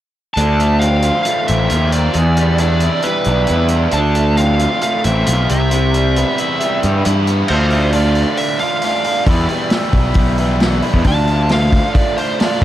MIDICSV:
0, 0, Header, 1, 5, 480
1, 0, Start_track
1, 0, Tempo, 446097
1, 395, Time_signature, 4, 2, 24, 8
1, 13605, End_track
2, 0, Start_track
2, 0, Title_t, "Lead electric guitar"
2, 0, Program_c, 0, 29
2, 363, Note_on_c, 0, 81, 83
2, 854, Note_on_c, 0, 77, 78
2, 873, Note_off_c, 0, 81, 0
2, 1308, Note_off_c, 0, 77, 0
2, 1321, Note_on_c, 0, 77, 73
2, 1583, Note_off_c, 0, 77, 0
2, 1587, Note_on_c, 0, 76, 70
2, 2068, Note_off_c, 0, 76, 0
2, 2072, Note_on_c, 0, 74, 69
2, 2779, Note_off_c, 0, 74, 0
2, 2791, Note_on_c, 0, 74, 79
2, 3266, Note_on_c, 0, 71, 66
2, 3286, Note_off_c, 0, 74, 0
2, 3946, Note_off_c, 0, 71, 0
2, 4234, Note_on_c, 0, 81, 82
2, 4679, Note_off_c, 0, 81, 0
2, 4703, Note_on_c, 0, 77, 85
2, 5179, Note_off_c, 0, 77, 0
2, 5192, Note_on_c, 0, 77, 77
2, 5414, Note_off_c, 0, 77, 0
2, 5435, Note_on_c, 0, 76, 80
2, 5906, Note_off_c, 0, 76, 0
2, 5919, Note_on_c, 0, 76, 72
2, 7310, Note_off_c, 0, 76, 0
2, 8062, Note_on_c, 0, 72, 65
2, 8542, Note_on_c, 0, 74, 81
2, 8559, Note_off_c, 0, 72, 0
2, 8991, Note_off_c, 0, 74, 0
2, 9016, Note_on_c, 0, 76, 86
2, 9246, Note_off_c, 0, 76, 0
2, 9250, Note_on_c, 0, 77, 93
2, 9935, Note_off_c, 0, 77, 0
2, 10000, Note_on_c, 0, 74, 72
2, 10441, Note_off_c, 0, 74, 0
2, 11921, Note_on_c, 0, 81, 103
2, 12362, Note_off_c, 0, 81, 0
2, 12399, Note_on_c, 0, 77, 83
2, 12842, Note_off_c, 0, 77, 0
2, 12858, Note_on_c, 0, 74, 70
2, 13094, Note_on_c, 0, 72, 72
2, 13112, Note_off_c, 0, 74, 0
2, 13325, Note_off_c, 0, 72, 0
2, 13338, Note_on_c, 0, 74, 70
2, 13593, Note_off_c, 0, 74, 0
2, 13605, End_track
3, 0, Start_track
3, 0, Title_t, "Overdriven electric guitar"
3, 0, Program_c, 1, 29
3, 402, Note_on_c, 1, 50, 59
3, 642, Note_on_c, 1, 57, 52
3, 871, Note_on_c, 1, 60, 56
3, 1114, Note_on_c, 1, 65, 59
3, 1337, Note_off_c, 1, 57, 0
3, 1350, Note_on_c, 1, 57, 58
3, 1586, Note_off_c, 1, 60, 0
3, 1597, Note_off_c, 1, 50, 0
3, 1599, Note_on_c, 1, 60, 52
3, 1822, Note_off_c, 1, 65, 0
3, 1835, Note_on_c, 1, 65, 65
3, 2072, Note_off_c, 1, 60, 0
3, 2085, Note_on_c, 1, 60, 59
3, 2311, Note_off_c, 1, 57, 0
3, 2313, Note_on_c, 1, 40, 54
3, 2314, Note_off_c, 1, 65, 0
3, 2319, Note_off_c, 1, 60, 0
3, 2557, Note_on_c, 1, 55, 52
3, 2794, Note_on_c, 1, 62, 65
3, 3046, Note_on_c, 1, 64, 67
3, 3266, Note_off_c, 1, 55, 0
3, 3279, Note_on_c, 1, 55, 58
3, 3512, Note_off_c, 1, 40, 0
3, 3513, Note_off_c, 1, 62, 0
3, 3526, Note_on_c, 1, 62, 60
3, 3755, Note_off_c, 1, 64, 0
3, 3768, Note_on_c, 1, 64, 65
3, 3997, Note_off_c, 1, 62, 0
3, 4010, Note_on_c, 1, 62, 58
3, 4235, Note_off_c, 1, 55, 0
3, 4237, Note_on_c, 1, 50, 70
3, 4240, Note_off_c, 1, 62, 0
3, 4240, Note_off_c, 1, 64, 0
3, 4474, Note_on_c, 1, 57, 53
3, 4707, Note_on_c, 1, 60, 58
3, 4943, Note_on_c, 1, 65, 71
3, 5169, Note_off_c, 1, 57, 0
3, 5182, Note_on_c, 1, 57, 61
3, 5415, Note_off_c, 1, 60, 0
3, 5419, Note_on_c, 1, 60, 57
3, 5433, Note_off_c, 1, 50, 0
3, 5652, Note_off_c, 1, 65, 0
3, 5665, Note_on_c, 1, 65, 66
3, 5905, Note_off_c, 1, 57, 0
3, 5907, Note_off_c, 1, 65, 0
3, 5916, Note_on_c, 1, 48, 65
3, 6140, Note_off_c, 1, 48, 0
3, 6153, Note_on_c, 1, 48, 58
3, 6388, Note_on_c, 1, 55, 59
3, 6634, Note_off_c, 1, 60, 0
3, 6638, Note_on_c, 1, 59, 62
3, 6878, Note_on_c, 1, 64, 73
3, 7093, Note_off_c, 1, 55, 0
3, 7106, Note_on_c, 1, 55, 60
3, 7330, Note_off_c, 1, 59, 0
3, 7343, Note_on_c, 1, 59, 55
3, 7350, Note_off_c, 1, 48, 0
3, 7572, Note_off_c, 1, 64, 0
3, 7585, Note_on_c, 1, 64, 71
3, 7817, Note_off_c, 1, 59, 0
3, 7830, Note_on_c, 1, 59, 68
3, 8066, Note_off_c, 1, 55, 0
3, 8066, Note_off_c, 1, 64, 0
3, 8067, Note_on_c, 1, 50, 81
3, 8069, Note_off_c, 1, 59, 0
3, 8072, Note_on_c, 1, 57, 71
3, 8083, Note_on_c, 1, 62, 77
3, 8092, Note_on_c, 1, 65, 78
3, 8279, Note_off_c, 1, 65, 0
3, 8292, Note_on_c, 1, 65, 52
3, 8296, Note_off_c, 1, 57, 0
3, 8302, Note_off_c, 1, 62, 0
3, 8306, Note_on_c, 1, 62, 56
3, 8309, Note_on_c, 1, 57, 53
3, 8515, Note_off_c, 1, 50, 0
3, 8524, Note_off_c, 1, 57, 0
3, 8528, Note_on_c, 1, 50, 64
3, 8536, Note_on_c, 1, 57, 68
3, 8537, Note_off_c, 1, 65, 0
3, 8542, Note_off_c, 1, 62, 0
3, 8546, Note_on_c, 1, 62, 76
3, 8550, Note_on_c, 1, 65, 71
3, 9242, Note_off_c, 1, 65, 0
3, 9254, Note_off_c, 1, 57, 0
3, 9254, Note_off_c, 1, 62, 0
3, 9255, Note_on_c, 1, 65, 67
3, 9258, Note_on_c, 1, 62, 51
3, 9267, Note_on_c, 1, 57, 50
3, 9490, Note_off_c, 1, 50, 0
3, 9492, Note_off_c, 1, 57, 0
3, 9503, Note_on_c, 1, 50, 83
3, 9505, Note_off_c, 1, 62, 0
3, 9505, Note_on_c, 1, 57, 84
3, 9507, Note_off_c, 1, 65, 0
3, 9509, Note_on_c, 1, 62, 97
3, 9520, Note_on_c, 1, 65, 93
3, 9717, Note_off_c, 1, 65, 0
3, 9730, Note_on_c, 1, 65, 64
3, 9738, Note_off_c, 1, 62, 0
3, 9742, Note_on_c, 1, 62, 56
3, 9743, Note_off_c, 1, 57, 0
3, 9756, Note_on_c, 1, 57, 55
3, 9962, Note_off_c, 1, 50, 0
3, 9964, Note_off_c, 1, 65, 0
3, 9965, Note_on_c, 1, 40, 71
3, 9967, Note_on_c, 1, 52, 84
3, 9968, Note_off_c, 1, 57, 0
3, 9968, Note_on_c, 1, 47, 79
3, 9972, Note_on_c, 1, 55, 78
3, 9976, Note_off_c, 1, 62, 0
3, 9980, Note_on_c, 1, 59, 97
3, 9984, Note_on_c, 1, 64, 97
3, 10190, Note_off_c, 1, 64, 0
3, 10203, Note_off_c, 1, 59, 0
3, 10203, Note_on_c, 1, 64, 57
3, 10208, Note_off_c, 1, 55, 0
3, 10214, Note_off_c, 1, 52, 0
3, 10216, Note_on_c, 1, 59, 62
3, 10221, Note_on_c, 1, 55, 57
3, 10227, Note_on_c, 1, 52, 45
3, 10439, Note_off_c, 1, 52, 0
3, 10452, Note_on_c, 1, 52, 67
3, 10454, Note_off_c, 1, 55, 0
3, 10455, Note_off_c, 1, 59, 0
3, 10456, Note_off_c, 1, 40, 0
3, 10457, Note_off_c, 1, 47, 0
3, 10466, Note_off_c, 1, 64, 0
3, 10467, Note_on_c, 1, 55, 69
3, 10468, Note_on_c, 1, 59, 76
3, 10479, Note_on_c, 1, 64, 67
3, 11165, Note_off_c, 1, 64, 0
3, 11175, Note_off_c, 1, 59, 0
3, 11178, Note_on_c, 1, 64, 57
3, 11179, Note_off_c, 1, 55, 0
3, 11186, Note_off_c, 1, 52, 0
3, 11188, Note_on_c, 1, 59, 53
3, 11192, Note_on_c, 1, 55, 52
3, 11199, Note_on_c, 1, 52, 48
3, 11412, Note_off_c, 1, 52, 0
3, 11417, Note_off_c, 1, 55, 0
3, 11418, Note_on_c, 1, 40, 87
3, 11419, Note_off_c, 1, 59, 0
3, 11424, Note_off_c, 1, 64, 0
3, 11425, Note_on_c, 1, 52, 90
3, 11426, Note_on_c, 1, 47, 82
3, 11430, Note_on_c, 1, 55, 95
3, 11432, Note_on_c, 1, 59, 91
3, 11437, Note_on_c, 1, 64, 103
3, 11639, Note_off_c, 1, 64, 0
3, 11645, Note_off_c, 1, 59, 0
3, 11652, Note_off_c, 1, 55, 0
3, 11652, Note_on_c, 1, 64, 66
3, 11656, Note_off_c, 1, 52, 0
3, 11658, Note_on_c, 1, 59, 59
3, 11665, Note_on_c, 1, 55, 64
3, 11669, Note_on_c, 1, 52, 60
3, 11884, Note_off_c, 1, 52, 0
3, 11886, Note_off_c, 1, 64, 0
3, 11888, Note_on_c, 1, 50, 76
3, 11889, Note_off_c, 1, 40, 0
3, 11889, Note_off_c, 1, 59, 0
3, 11892, Note_off_c, 1, 55, 0
3, 11893, Note_off_c, 1, 47, 0
3, 11896, Note_on_c, 1, 57, 82
3, 11899, Note_on_c, 1, 62, 81
3, 11904, Note_on_c, 1, 65, 91
3, 12133, Note_off_c, 1, 65, 0
3, 12143, Note_off_c, 1, 62, 0
3, 12146, Note_on_c, 1, 65, 62
3, 12154, Note_off_c, 1, 57, 0
3, 12156, Note_on_c, 1, 62, 52
3, 12167, Note_on_c, 1, 57, 44
3, 12357, Note_off_c, 1, 50, 0
3, 12366, Note_off_c, 1, 57, 0
3, 12368, Note_off_c, 1, 62, 0
3, 12369, Note_on_c, 1, 50, 72
3, 12379, Note_on_c, 1, 57, 75
3, 12381, Note_off_c, 1, 65, 0
3, 12381, Note_on_c, 1, 62, 76
3, 12394, Note_on_c, 1, 65, 74
3, 13088, Note_off_c, 1, 65, 0
3, 13096, Note_off_c, 1, 62, 0
3, 13101, Note_on_c, 1, 65, 67
3, 13104, Note_off_c, 1, 57, 0
3, 13109, Note_on_c, 1, 62, 58
3, 13116, Note_on_c, 1, 57, 48
3, 13331, Note_off_c, 1, 50, 0
3, 13342, Note_off_c, 1, 57, 0
3, 13344, Note_on_c, 1, 50, 80
3, 13348, Note_off_c, 1, 62, 0
3, 13352, Note_off_c, 1, 65, 0
3, 13355, Note_on_c, 1, 57, 83
3, 13361, Note_on_c, 1, 62, 87
3, 13365, Note_on_c, 1, 65, 94
3, 13574, Note_off_c, 1, 50, 0
3, 13579, Note_off_c, 1, 57, 0
3, 13579, Note_off_c, 1, 65, 0
3, 13581, Note_off_c, 1, 62, 0
3, 13605, End_track
4, 0, Start_track
4, 0, Title_t, "Picked electric bass"
4, 0, Program_c, 2, 34
4, 399, Note_on_c, 2, 38, 70
4, 1184, Note_off_c, 2, 38, 0
4, 1609, Note_on_c, 2, 33, 78
4, 1799, Note_off_c, 2, 33, 0
4, 1844, Note_on_c, 2, 39, 84
4, 2233, Note_off_c, 2, 39, 0
4, 2315, Note_on_c, 2, 40, 77
4, 3101, Note_off_c, 2, 40, 0
4, 3514, Note_on_c, 2, 35, 79
4, 3710, Note_off_c, 2, 35, 0
4, 3766, Note_on_c, 2, 40, 89
4, 4154, Note_off_c, 2, 40, 0
4, 4227, Note_on_c, 2, 38, 71
4, 5015, Note_off_c, 2, 38, 0
4, 5436, Note_on_c, 2, 33, 78
4, 5630, Note_off_c, 2, 33, 0
4, 5679, Note_on_c, 2, 35, 98
4, 5872, Note_off_c, 2, 35, 0
4, 5923, Note_on_c, 2, 36, 84
4, 6704, Note_off_c, 2, 36, 0
4, 7362, Note_on_c, 2, 43, 76
4, 7553, Note_off_c, 2, 43, 0
4, 7599, Note_on_c, 2, 43, 89
4, 7988, Note_off_c, 2, 43, 0
4, 8073, Note_on_c, 2, 38, 83
4, 8858, Note_off_c, 2, 38, 0
4, 9975, Note_on_c, 2, 40, 85
4, 10176, Note_off_c, 2, 40, 0
4, 10685, Note_on_c, 2, 35, 98
4, 10891, Note_off_c, 2, 35, 0
4, 10924, Note_on_c, 2, 35, 80
4, 11623, Note_off_c, 2, 35, 0
4, 11773, Note_on_c, 2, 40, 68
4, 11878, Note_off_c, 2, 40, 0
4, 11892, Note_on_c, 2, 38, 79
4, 12687, Note_off_c, 2, 38, 0
4, 13605, End_track
5, 0, Start_track
5, 0, Title_t, "Drums"
5, 398, Note_on_c, 9, 42, 69
5, 506, Note_off_c, 9, 42, 0
5, 643, Note_on_c, 9, 42, 51
5, 751, Note_off_c, 9, 42, 0
5, 876, Note_on_c, 9, 42, 76
5, 983, Note_off_c, 9, 42, 0
5, 1102, Note_on_c, 9, 42, 57
5, 1209, Note_off_c, 9, 42, 0
5, 1344, Note_on_c, 9, 42, 74
5, 1452, Note_off_c, 9, 42, 0
5, 1590, Note_on_c, 9, 42, 57
5, 1698, Note_off_c, 9, 42, 0
5, 1825, Note_on_c, 9, 42, 72
5, 1933, Note_off_c, 9, 42, 0
5, 2067, Note_on_c, 9, 42, 58
5, 2175, Note_off_c, 9, 42, 0
5, 2297, Note_on_c, 9, 42, 64
5, 2404, Note_off_c, 9, 42, 0
5, 2546, Note_on_c, 9, 42, 46
5, 2654, Note_off_c, 9, 42, 0
5, 2778, Note_on_c, 9, 42, 76
5, 2885, Note_off_c, 9, 42, 0
5, 3013, Note_on_c, 9, 42, 52
5, 3121, Note_off_c, 9, 42, 0
5, 3253, Note_on_c, 9, 42, 65
5, 3360, Note_off_c, 9, 42, 0
5, 3489, Note_on_c, 9, 42, 48
5, 3597, Note_off_c, 9, 42, 0
5, 3731, Note_on_c, 9, 42, 67
5, 3838, Note_off_c, 9, 42, 0
5, 3964, Note_on_c, 9, 42, 54
5, 4071, Note_off_c, 9, 42, 0
5, 4210, Note_on_c, 9, 42, 65
5, 4318, Note_off_c, 9, 42, 0
5, 4463, Note_on_c, 9, 42, 51
5, 4571, Note_off_c, 9, 42, 0
5, 4704, Note_on_c, 9, 42, 65
5, 4812, Note_off_c, 9, 42, 0
5, 4942, Note_on_c, 9, 42, 49
5, 5049, Note_off_c, 9, 42, 0
5, 5180, Note_on_c, 9, 42, 66
5, 5287, Note_off_c, 9, 42, 0
5, 5423, Note_on_c, 9, 42, 60
5, 5531, Note_off_c, 9, 42, 0
5, 5664, Note_on_c, 9, 42, 80
5, 5772, Note_off_c, 9, 42, 0
5, 5911, Note_on_c, 9, 42, 56
5, 6019, Note_off_c, 9, 42, 0
5, 6143, Note_on_c, 9, 42, 78
5, 6251, Note_off_c, 9, 42, 0
5, 6391, Note_on_c, 9, 42, 51
5, 6499, Note_off_c, 9, 42, 0
5, 6630, Note_on_c, 9, 42, 67
5, 6738, Note_off_c, 9, 42, 0
5, 6865, Note_on_c, 9, 42, 53
5, 6973, Note_off_c, 9, 42, 0
5, 7106, Note_on_c, 9, 42, 64
5, 7214, Note_off_c, 9, 42, 0
5, 7348, Note_on_c, 9, 42, 53
5, 7456, Note_off_c, 9, 42, 0
5, 7585, Note_on_c, 9, 42, 78
5, 7692, Note_off_c, 9, 42, 0
5, 7824, Note_on_c, 9, 42, 46
5, 7932, Note_off_c, 9, 42, 0
5, 8050, Note_on_c, 9, 49, 77
5, 8157, Note_off_c, 9, 49, 0
5, 8287, Note_on_c, 9, 46, 40
5, 8395, Note_off_c, 9, 46, 0
5, 8527, Note_on_c, 9, 46, 58
5, 8634, Note_off_c, 9, 46, 0
5, 8770, Note_on_c, 9, 46, 43
5, 8877, Note_off_c, 9, 46, 0
5, 9009, Note_on_c, 9, 46, 61
5, 9116, Note_off_c, 9, 46, 0
5, 9243, Note_on_c, 9, 46, 51
5, 9351, Note_off_c, 9, 46, 0
5, 9486, Note_on_c, 9, 46, 56
5, 9594, Note_off_c, 9, 46, 0
5, 9730, Note_on_c, 9, 46, 47
5, 9838, Note_off_c, 9, 46, 0
5, 9970, Note_on_c, 9, 36, 94
5, 9974, Note_on_c, 9, 46, 65
5, 10078, Note_off_c, 9, 36, 0
5, 10081, Note_off_c, 9, 46, 0
5, 10207, Note_on_c, 9, 46, 41
5, 10315, Note_off_c, 9, 46, 0
5, 10438, Note_on_c, 9, 46, 65
5, 10450, Note_on_c, 9, 38, 97
5, 10545, Note_off_c, 9, 46, 0
5, 10557, Note_off_c, 9, 38, 0
5, 10682, Note_on_c, 9, 46, 44
5, 10687, Note_on_c, 9, 36, 68
5, 10790, Note_off_c, 9, 46, 0
5, 10795, Note_off_c, 9, 36, 0
5, 10912, Note_on_c, 9, 46, 57
5, 10925, Note_on_c, 9, 36, 92
5, 11019, Note_off_c, 9, 46, 0
5, 11033, Note_off_c, 9, 36, 0
5, 11167, Note_on_c, 9, 46, 45
5, 11274, Note_off_c, 9, 46, 0
5, 11407, Note_on_c, 9, 46, 57
5, 11419, Note_on_c, 9, 38, 96
5, 11515, Note_off_c, 9, 46, 0
5, 11527, Note_off_c, 9, 38, 0
5, 11645, Note_on_c, 9, 46, 45
5, 11752, Note_off_c, 9, 46, 0
5, 11769, Note_on_c, 9, 36, 67
5, 11877, Note_off_c, 9, 36, 0
5, 11884, Note_on_c, 9, 46, 58
5, 11889, Note_on_c, 9, 36, 80
5, 11991, Note_off_c, 9, 46, 0
5, 11997, Note_off_c, 9, 36, 0
5, 12131, Note_on_c, 9, 46, 34
5, 12239, Note_off_c, 9, 46, 0
5, 12365, Note_on_c, 9, 46, 54
5, 12377, Note_on_c, 9, 38, 101
5, 12472, Note_off_c, 9, 46, 0
5, 12484, Note_off_c, 9, 38, 0
5, 12616, Note_on_c, 9, 36, 70
5, 12616, Note_on_c, 9, 46, 46
5, 12628, Note_on_c, 9, 38, 25
5, 12724, Note_off_c, 9, 36, 0
5, 12724, Note_off_c, 9, 46, 0
5, 12736, Note_off_c, 9, 38, 0
5, 12858, Note_on_c, 9, 36, 93
5, 12862, Note_on_c, 9, 46, 58
5, 12966, Note_off_c, 9, 36, 0
5, 12969, Note_off_c, 9, 46, 0
5, 13100, Note_on_c, 9, 46, 46
5, 13208, Note_off_c, 9, 46, 0
5, 13341, Note_on_c, 9, 46, 64
5, 13353, Note_on_c, 9, 38, 104
5, 13449, Note_off_c, 9, 46, 0
5, 13460, Note_off_c, 9, 38, 0
5, 13605, End_track
0, 0, End_of_file